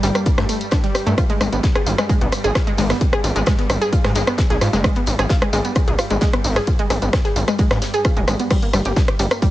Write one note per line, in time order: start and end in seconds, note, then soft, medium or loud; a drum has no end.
0.00 0.11 G1 loud
0.00 8.49 G2 medium
0.00 8.49 G3 medium
0.00 0.12 G3 loud
0.00 closed hi-hat medium
0.00 open hi-hat loud
0.00 ride medium
0.00 tambourine medium
0.15 0.23 A#3 medium
0.15 cross-stick medium
0.15 closed hi-hat medium
0.15 ride medium
0.15 tambourine soft
0.26 kick loud
0.26 closed hi-hat medium
0.26 ride medium
0.26 tambourine soft
0.38 0.45 G2 medium
0.38 0.46 A3 medium
0.38 cross-stick loud
0.38 snare medium
0.38 closed hi-hat medium
0.38 ride medium
0.49 0.55 A3 medium
0.49 closed hi-hat medium
0.49 open hi-hat loud
0.49 ride medium
0.49 tambourine medium
0.61 closed hi-hat medium
0.61 ride medium
0.61 tambourine soft
0.71 0.78 D4 medium
0.71 kick loud
0.71 cross-stick medium
0.71 snare loud
0.71 closed hi-hat medium
0.71 ride medium
0.71 tambourine soft
0.83 0.89 G3 medium
0.83 snare soft
0.83 closed hi-hat medium
0.83 ride medium
0.95 1.01 G4 medium
0.95 cross-stick medium
0.95 closed hi-hat medium
0.95 open hi-hat loud
0.95 ride medium
0.95 tambourine medium
1.06 1.14 G2 medium
1.06 1.15 A3 loud
1.06 closed hi-hat medium
1.06 ride medium
1.06 tambourine soft
1.18 1.24 F4 medium
1.18 kick loud
1.18 cross-stick medium
1.18 closed hi-hat medium
1.18 ride medium
1.18 tambourine soft
1.30 1.33 G#3 loud
1.30 closed hi-hat soft
1.30 ride medium
1.41 1.48 G#1 loud
1.41 1.50 G#3 medium
1.41 cross-stick medium
1.41 closed hi-hat medium
1.41 open hi-hat loud
1.41 ride medium
1.41 tambourine medium
1.52 1.60 G#1 medium
1.52 1.61 B3 medium
1.52 closed hi-hat medium
1.52 ride medium
1.52 tambourine soft
1.63 kick loud
1.63 snare loud
1.63 closed hi-hat medium
1.63 ride medium
1.63 tambourine soft
1.75 1.81 G#4 loud
1.75 cross-stick medium
1.75 closed hi-hat medium
1.75 ride medium
1.86 1.94 G#1 loud
1.86 1.92 F4 medium
1.86 closed hi-hat medium
1.86 open hi-hat loud
1.86 ride medium
1.86 tambourine medium
1.98 2.02 G#3 loud
1.98 cross-stick loud
1.98 closed hi-hat medium
1.98 ride medium
1.98 tambourine soft
2.09 2.18 G#3 loud
2.09 kick loud
2.09 closed hi-hat medium
2.09 ride medium
2.09 tambourine soft
2.21 2.28 B1 medium
2.21 2.30 B3 medium
2.21 closed hi-hat medium
2.21 ride medium
2.32 cross-stick medium
2.32 closed hi-hat medium
2.32 open hi-hat loud
2.32 ride medium
2.32 tambourine medium
2.44 2.51 G#1 medium
2.44 2.50 G#4 loud
2.44 closed hi-hat medium
2.44 ride medium
2.44 tambourine soft
2.55 2.61 F4 medium
2.55 kick loud
2.55 cross-stick loud
2.55 snare loud
2.55 closed hi-hat medium
2.55 ride medium
2.55 tambourine soft
2.67 2.70 G#3 loud
2.67 closed hi-hat soft
2.67 ride medium
2.77 2.93 G#1 medium
2.77 2.87 G#3 loud
2.77 open hi-hat medium
2.77 open hi-hat loud
2.77 ride medium
2.77 tambourine medium
2.90 2.98 B3 medium
2.90 cross-stick medium
2.90 snare medium
2.90 closed hi-hat medium
2.90 ride medium
2.90 tambourine soft
3.01 kick loud
3.01 closed hi-hat medium
3.01 ride medium
3.01 tambourine soft
3.13 3.18 G#4 loud
3.13 cross-stick medium
3.13 closed hi-hat medium
3.13 ride medium
3.24 3.31 G#1 loud
3.24 3.30 F4 medium
3.24 closed hi-hat medium
3.24 open hi-hat loud
3.24 ride medium
3.24 tambourine medium
3.36 3.43 G#1 medium
3.36 3.39 G#3 loud
3.36 closed hi-hat medium
3.36 ride medium
3.36 tambourine soft
3.46 3.56 G#3 loud
3.46 kick loud
3.46 cross-stick medium
3.46 snare loud
3.46 closed hi-hat loud
3.46 closed hi-hat medium
3.46 ride medium
3.46 tambourine soft
3.59 3.67 B3 medium
3.59 snare soft
3.59 closed hi-hat medium
3.59 ride medium
3.69 3.77 G#1 loud
3.69 cross-stick loud
3.69 closed hi-hat medium
3.69 open hi-hat loud
3.69 ride medium
3.69 tambourine medium
3.81 3.87 G#4 loud
3.81 closed hi-hat medium
3.81 ride medium
3.81 tambourine soft
3.93 3.98 F4 medium
3.93 kick loud
3.93 closed hi-hat medium
3.93 ride medium
3.93 tambourine soft
4.04 4.11 G#2 loud
4.04 4.08 G#3 loud
4.04 cross-stick medium
4.04 snare medium
4.04 closed hi-hat medium
4.04 ride medium
4.15 4.23 G#1 medium
4.15 4.24 G#3 loud
4.15 closed hi-hat medium
4.15 open hi-hat loud
4.15 ride medium
4.15 tambourine medium
4.27 4.36 B3 medium
4.27 cross-stick loud
4.27 closed hi-hat soft
4.27 ride medium
4.27 tambourine soft
4.38 kick loud
4.38 snare loud
4.38 closed hi-hat medium
4.38 ride medium
4.38 tambourine soft
4.50 4.57 B1 medium
4.50 4.56 G#4 loud
4.50 snare soft
4.50 closed hi-hat medium
4.50 ride medium
4.61 4.69 G#2 medium
4.61 4.67 F4 medium
4.61 cross-stick medium
4.61 closed hi-hat medium
4.61 open hi-hat loud
4.61 ride medium
4.61 tambourine medium
4.73 4.87 F#1 medium
4.73 4.76 G#3 loud
4.73 snare soft
4.73 closed hi-hat medium
4.73 ride medium
4.73 tambourine soft
4.84 4.93 G#3 loud
4.84 kick loud
4.84 cross-stick loud
4.84 closed hi-hat medium
4.84 ride medium
4.84 tambourine soft
4.95 5.04 B3 medium
4.95 closed hi-hat soft
4.95 closed hi-hat medium
4.95 ride medium
5.06 5.15 G#1 loud
5.06 closed hi-hat medium
5.06 open hi-hat loud
5.06 ride medium
5.06 tambourine medium
5.19 5.26 G#1 medium
5.19 5.24 G#4 loud
5.19 cross-stick medium
5.19 closed hi-hat medium
5.19 ride medium
5.19 tambourine soft
5.29 5.36 F4 medium
5.29 kick loud
5.29 snare loud
5.29 closed hi-hat medium
5.29 ride medium
5.29 tambourine soft
5.42 5.45 G#3 medium
5.42 cross-stick medium
5.42 closed hi-hat medium
5.42 ride medium
5.53 5.60 G#1 loud
5.53 5.62 G#3 loud
5.53 closed hi-hat medium
5.53 open hi-hat loud
5.53 ride medium
5.53 tambourine medium
5.65 5.73 B3 medium
5.65 closed hi-hat medium
5.65 ride medium
5.65 tambourine soft
5.75 kick loud
5.75 cross-stick medium
5.75 closed hi-hat medium
5.75 ride medium
5.75 tambourine soft
5.88 5.95 B1 medium
5.88 5.93 G#4 loud
5.88 closed hi-hat soft
5.88 ride medium
5.98 6.05 F4 medium
5.98 cross-stick medium
5.98 closed hi-hat medium
5.98 open hi-hat loud
5.98 ride medium
5.98 tambourine medium
6.10 6.18 G#1 medium
6.10 6.14 G#3 loud
6.10 closed hi-hat medium
6.10 ride medium
6.10 tambourine soft
6.21 6.30 G#3 loud
6.21 kick loud
6.21 snare loud
6.21 closed hi-hat loud
6.21 closed hi-hat medium
6.21 ride medium
6.21 tambourine soft
6.33 6.42 B3 medium
6.33 cross-stick medium
6.33 closed hi-hat medium
6.33 ride medium
6.44 6.59 G#1 medium
6.44 open hi-hat loud
6.44 open hi-hat medium
6.44 ride medium
6.44 tambourine medium
6.56 6.62 G#4 loud
6.56 cross-stick loud
6.56 snare medium
6.56 closed hi-hat medium
6.56 ride medium
6.56 tambourine soft
6.67 6.73 F4 medium
6.67 kick loud
6.67 closed hi-hat medium
6.67 closed hi-hat loud
6.67 ride medium
6.67 tambourine soft
6.79 6.83 G#3 loud
6.79 closed hi-hat medium
6.79 ride medium
6.90 6.98 G#1 loud
6.90 6.99 G#3 loud
6.90 cross-stick medium
6.90 closed hi-hat medium
6.90 open hi-hat loud
6.90 ride medium
6.90 tambourine medium
7.02 7.09 G#1 medium
7.02 7.10 B3 medium
7.02 closed hi-hat medium
7.02 ride medium
7.02 tambourine soft
7.13 kick loud
7.13 cross-stick medium
7.13 snare loud
7.13 closed hi-hat medium
7.13 ride medium
7.13 tambourine soft
7.25 7.30 G#4 loud
7.25 snare soft
7.25 closed hi-hat medium
7.25 ride medium
7.36 7.44 G#1 loud
7.36 7.42 F4 medium
7.36 closed hi-hat medium
7.36 open hi-hat loud
7.36 ride medium
7.36 tambourine medium
7.48 7.51 G#3 loud
7.48 cross-stick medium
7.48 closed hi-hat medium
7.48 ride medium
7.48 tambourine soft
7.59 7.68 G#3 loud
7.59 kick loud
7.59 closed hi-hat medium
7.59 ride medium
7.59 tambourine soft
7.71 7.78 G#2 medium
7.71 7.79 B3 medium
7.71 cross-stick medium
7.71 snare medium
7.71 closed hi-hat medium
7.71 ride medium
7.82 snare loud
7.82 closed hi-hat medium
7.82 open hi-hat loud
7.82 ride medium
7.82 tambourine medium
7.94 7.99 G#4 loud
7.94 closed hi-hat medium
7.94 ride medium
7.94 tambourine soft
8.05 8.11 F4 medium
8.05 kick loud
8.05 cross-stick medium
8.05 closed hi-hat medium
8.05 ride medium
8.05 tambourine soft
8.17 8.24 D#1 medium
8.17 8.20 G#3 loud
8.17 closed hi-hat medium
8.17 ride medium
8.28 8.35 G#1 medium
8.28 8.37 G#3 loud
8.28 cross-stick medium
8.28 closed hi-hat medium
8.28 open hi-hat loud
8.28 ride medium
8.28 tambourine medium
8.40 8.48 B3 medium
8.40 closed hi-hat medium
8.40 ride medium
8.40 tambourine soft
8.50 9.51 G2 medium
8.50 9.51 G3 medium
8.50 8.60 G3 loud
8.50 kick loud
8.50 cross-stick medium
8.50 closed hi-hat medium
8.50 crash medium
8.50 ride medium
8.50 tambourine soft
8.62 8.71 A#3 medium
8.62 closed hi-hat medium
8.62 closed hi-hat soft
8.62 ride medium
8.73 8.81 G1 loud
8.73 8.77 G3 loud
8.73 cross-stick medium
8.73 closed hi-hat medium
8.73 open hi-hat loud
8.73 ride medium
8.73 tambourine medium
8.85 8.92 G1 medium
8.85 8.91 G4 loud
8.85 closed hi-hat medium
8.85 ride medium
8.85 tambourine soft
8.96 9.02 D4 medium
8.96 kick loud
8.96 snare loud
8.96 closed hi-hat medium
8.96 ride medium
8.96 tambourine soft
9.08 cross-stick medium
9.08 closed hi-hat medium
9.08 ride medium
9.19 9.27 G1 loud
9.19 9.28 G3 loud
9.19 closed hi-hat medium
9.19 open hi-hat loud
9.19 ride medium
9.19 tambourine medium
9.31 9.39 A#3 medium
9.31 cross-stick medium
9.31 closed hi-hat medium
9.31 ride medium
9.31 tambourine soft
9.42 9.46 G3 loud
9.42 kick loud
9.42 closed hi-hat medium
9.42 ride medium
9.42 tambourine soft